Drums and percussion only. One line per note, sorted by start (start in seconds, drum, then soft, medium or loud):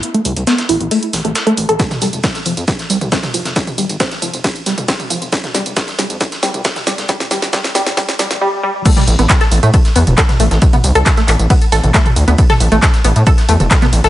0.03 closed hi-hat medium
0.03 shaker medium
0.14 closed hi-hat medium
0.25 open hi-hat loud
0.25 shaker medium
0.36 closed hi-hat soft
0.47 snare loud
0.47 closed hi-hat medium
0.47 shaker medium
0.58 snare medium
0.58 closed hi-hat medium
0.69 open hi-hat loud
0.69 shaker medium
0.81 closed hi-hat medium
0.91 closed hi-hat medium
0.91 open hi-hat medium
1.03 closed hi-hat medium
1.13 snare soft
1.13 open hi-hat loud
1.13 shaker medium
1.25 closed hi-hat medium
1.35 snare loud
1.35 closed hi-hat medium
1.35 shaker medium
1.47 closed hi-hat medium
1.57 open hi-hat loud
1.57 shaker medium
1.69 closed hi-hat medium
1.80 kick loud
1.80 snare soft
1.80 closed hi-hat medium
1.80 ride medium
1.80 tambourine soft
1.80 shaker medium
1.91 snare soft
1.91 closed hi-hat medium
1.91 mid tom loud
1.91 tambourine soft
2.02 open hi-hat loud
2.02 tambourine medium
2.02 shaker medium
2.13 closed hi-hat medium
2.13 tambourine soft
2.24 kick loud
2.24 snare loud
2.24 snare medium
2.24 closed hi-hat medium
2.24 ride medium
2.24 tambourine soft
2.24 shaker medium
2.35 snare soft
2.35 closed hi-hat soft
2.35 tambourine soft
2.46 open hi-hat loud
2.46 tambourine medium
2.46 shaker medium
2.57 closed hi-hat medium
2.57 tambourine soft
2.68 kick loud
2.68 snare medium
2.68 closed hi-hat medium
2.68 ride medium
2.68 tambourine soft
2.68 shaker medium
2.79 snare soft
2.79 closed hi-hat medium
2.79 tambourine soft
2.90 open hi-hat loud
2.90 tambourine medium
2.90 shaker medium
3.01 closed hi-hat medium
3.01 mid tom medium
3.01 tambourine soft
3.12 kick loud
3.12 snare medium
3.12 snare loud
3.12 closed hi-hat medium
3.12 ride medium
3.12 tambourine soft
3.12 shaker medium
3.23 snare medium
3.23 closed hi-hat soft
3.23 mid tom loud
3.23 tambourine soft
3.34 open hi-hat loud
3.34 tambourine medium
3.34 shaker medium
3.45 snare medium
3.45 closed hi-hat soft
3.45 tambourine soft
3.56 kick loud
3.56 snare medium
3.56 closed hi-hat medium
3.56 ride medium
3.56 tambourine soft
3.56 shaker medium
3.67 closed hi-hat medium
3.67 mid tom loud
3.67 tambourine soft
3.78 open hi-hat loud
3.78 tambourine medium
3.78 shaker medium
3.89 closed hi-hat soft
3.89 tambourine soft
4.00 kick loud
4.00 snare medium
4.00 snare loud
4.00 closed hi-hat medium
4.00 ride medium
4.00 tambourine soft
4.00 shaker medium
4.11 snare medium
4.11 closed hi-hat soft
4.11 tambourine soft
4.22 open hi-hat loud
4.22 tambourine medium
4.22 shaker medium
4.34 closed hi-hat medium
4.34 tambourine soft
4.44 kick loud
4.44 snare medium
4.44 closed hi-hat medium
4.44 open hi-hat medium
4.44 ride medium
4.44 tambourine soft
4.56 closed hi-hat medium
4.56 tambourine soft
4.66 snare soft
4.66 open hi-hat loud
4.66 tambourine medium
4.66 shaker medium
4.78 closed hi-hat soft
4.78 mid tom medium
4.78 tambourine soft
4.88 kick loud
4.88 snare loud
4.88 snare medium
4.88 closed hi-hat medium
4.88 ride medium
4.88 tambourine soft
4.88 shaker medium
5.00 closed hi-hat medium
5.00 mid tom medium
5.00 tambourine soft
5.10 open hi-hat loud
5.10 tambourine medium
5.10 shaker medium
5.22 closed hi-hat soft
5.22 tambourine soft
5.33 kick loud
5.33 snare medium
5.33 closed hi-hat medium
5.33 ride medium
5.33 tambourine soft
5.33 shaker medium
5.44 snare soft
5.44 closed hi-hat medium
5.44 mid tom medium
5.44 tambourine soft
5.55 snare medium
5.55 open hi-hat loud
5.55 tambourine medium
5.55 shaker medium
5.66 closed hi-hat medium
5.66 tambourine soft
5.77 kick loud
5.77 snare medium
5.77 snare loud
5.77 closed hi-hat medium
5.77 ride medium
5.77 tambourine soft
5.77 shaker medium
5.88 snare soft
5.88 closed hi-hat medium
5.88 tambourine soft
5.99 snare medium
5.99 open hi-hat loud
5.99 tambourine medium
5.99 shaker medium
6.10 closed hi-hat medium
6.10 tambourine soft
6.21 kick loud
6.21 snare medium
6.21 closed hi-hat medium
6.21 ride medium
6.21 tambourine soft
6.21 shaker medium
6.32 snare soft
6.32 closed hi-hat medium
6.32 tambourine soft
6.43 snare medium
6.43 open hi-hat loud
6.43 tambourine medium
6.43 shaker medium
6.54 closed hi-hat medium
6.54 mid tom medium
6.54 tambourine soft
6.65 kick loud
6.65 snare medium
6.65 snare loud
6.65 closed hi-hat medium
6.65 ride medium
6.65 tambourine soft
6.65 shaker loud
6.76 snare medium
6.76 closed hi-hat soft
6.76 mid tom medium
6.76 tambourine soft
6.87 snare loud
6.87 open hi-hat loud
6.87 tambourine medium
6.87 shaker medium
6.98 snare medium
6.98 closed hi-hat soft
6.98 tambourine soft
7.09 kick loud
7.09 snare medium
7.09 closed hi-hat medium
7.09 ride medium
7.09 tambourine soft
7.09 shaker medium
7.20 snare medium
7.20 closed hi-hat medium
7.20 mid tom medium
7.20 tambourine soft
7.31 snare medium
7.31 open hi-hat loud
7.31 tambourine medium
7.31 shaker medium
7.42 snare medium
7.42 closed hi-hat soft
7.42 closed hi-hat medium
7.42 tambourine soft
7.53 kick loud
7.53 snare loud
7.53 snare medium
7.53 closed hi-hat medium
7.53 ride medium
7.53 tambourine soft
7.53 shaker medium
7.64 snare medium
7.64 closed hi-hat medium
7.64 tambourine soft
7.75 snare loud
7.75 open hi-hat loud
7.75 tambourine medium
7.75 shaker medium
7.87 snare medium
7.87 closed hi-hat medium
7.87 tambourine soft
7.97 kick loud
7.97 snare loud
7.97 closed hi-hat medium
7.97 open hi-hat medium
7.97 ride medium
7.97 tambourine soft
8.09 snare medium
8.09 closed hi-hat medium
8.09 tambourine soft
8.19 snare loud
8.19 snare soft
8.19 open hi-hat loud
8.19 tambourine medium
8.19 shaker medium
8.31 snare medium
8.31 closed hi-hat medium
8.31 mid tom medium
8.31 tambourine soft
8.85 kick loud
8.85 closed hi-hat medium
8.85 crash loud
8.85 ride medium
8.85 tambourine soft
8.85 shaker medium
8.97 snare soft
8.97 closed hi-hat medium
8.97 mid tom medium
8.97 tambourine soft
9.07 open hi-hat loud
9.07 tambourine medium
9.07 shaker medium
9.19 closed hi-hat medium
9.19 tambourine soft
9.29 kick loud
9.29 snare loud
9.29 clap loud
9.29 closed hi-hat medium
9.29 ride medium
9.29 tambourine soft
9.29 shaker medium
9.41 snare soft
9.41 closed hi-hat medium
9.41 tambourine soft
9.52 open hi-hat loud
9.52 tambourine medium
9.52 shaker medium
9.63 closed hi-hat medium
9.63 tambourine soft
9.74 kick loud
9.74 closed hi-hat medium
9.74 ride medium
9.74 tambourine soft
9.74 shaker medium
9.85 snare soft
9.85 closed hi-hat medium
9.85 tambourine soft
9.96 open hi-hat loud
9.96 tambourine medium
9.96 shaker medium
10.07 closed hi-hat medium
10.07 mid tom medium
10.07 tambourine soft
10.18 kick loud
10.18 snare loud
10.18 clap loud
10.18 closed hi-hat medium
10.18 ride medium
10.18 tambourine soft
10.18 shaker medium
10.29 snare medium
10.29 closed hi-hat medium
10.29 mid tom medium
10.29 tambourine soft
10.40 open hi-hat loud
10.40 tambourine medium
10.40 shaker medium
10.51 snare medium
10.51 closed hi-hat medium
10.51 tambourine soft
10.62 kick loud
10.62 closed hi-hat medium
10.62 ride medium
10.62 tambourine soft
10.62 shaker medium
10.73 closed hi-hat medium
10.73 mid tom medium
10.73 tambourine soft
10.84 open hi-hat loud
10.84 tambourine medium
10.84 shaker medium
10.95 closed hi-hat medium
10.95 closed hi-hat soft
10.95 tambourine soft
11.06 kick loud
11.06 snare loud
11.06 clap loud
11.06 closed hi-hat medium
11.06 ride medium
11.06 tambourine soft
11.06 shaker medium
11.17 snare medium
11.17 closed hi-hat medium
11.17 tambourine soft
11.28 clap medium
11.28 open hi-hat loud
11.28 tambourine medium
11.28 shaker medium
11.39 closed hi-hat medium
11.39 tambourine soft
11.50 kick loud
11.50 closed hi-hat medium
11.50 open hi-hat medium
11.50 ride medium
11.50 tambourine soft
11.62 closed hi-hat medium
11.62 tambourine soft
11.72 snare soft
11.72 open hi-hat loud
11.72 tambourine medium
11.72 shaker medium
11.84 closed hi-hat medium
11.84 mid tom medium
11.84 tambourine soft
11.94 kick loud
11.94 snare loud
11.94 clap loud
11.94 closed hi-hat medium
11.94 ride medium
11.94 tambourine soft
11.94 shaker medium
12.06 closed hi-hat medium
12.06 mid tom medium
12.06 tambourine soft
12.16 open hi-hat loud
12.16 tambourine medium
12.16 shaker medium
12.28 closed hi-hat medium
12.28 tambourine soft
12.38 kick loud
12.38 closed hi-hat medium
12.38 ride medium
12.38 tambourine soft
12.38 shaker medium
12.50 snare soft
12.50 closed hi-hat medium
12.50 mid tom loud
12.50 tambourine soft
12.60 open hi-hat loud
12.60 tambourine medium
12.60 shaker medium
12.72 closed hi-hat medium
12.72 tambourine soft
12.82 kick loud
12.82 snare loud
12.82 clap loud
12.82 closed hi-hat medium
12.82 ride medium
12.82 tambourine soft
12.82 shaker medium
12.94 snare soft
12.94 closed hi-hat medium
12.94 tambourine soft
13.04 open hi-hat loud
13.04 tambourine medium
13.04 shaker medium
13.16 closed hi-hat medium
13.16 tambourine soft
13.27 kick loud
13.27 closed hi-hat medium
13.27 ride medium
13.27 tambourine soft
13.27 shaker medium
13.38 snare soft
13.38 closed hi-hat medium
13.38 tambourine soft
13.49 open hi-hat loud
13.49 tambourine medium
13.49 shaker medium
13.60 closed hi-hat medium
13.60 mid tom medium
13.60 tambourine soft
13.71 kick loud
13.71 snare loud
13.71 clap loud
13.71 closed hi-hat medium
13.71 ride medium
13.71 tambourine soft
13.71 shaker medium
13.82 snare medium
13.82 closed hi-hat medium
13.82 mid tom loud
13.82 tambourine soft
13.93 open hi-hat loud
13.93 tambourine medium
13.93 shaker medium
14.04 snare medium
14.04 closed hi-hat medium
14.04 tambourine soft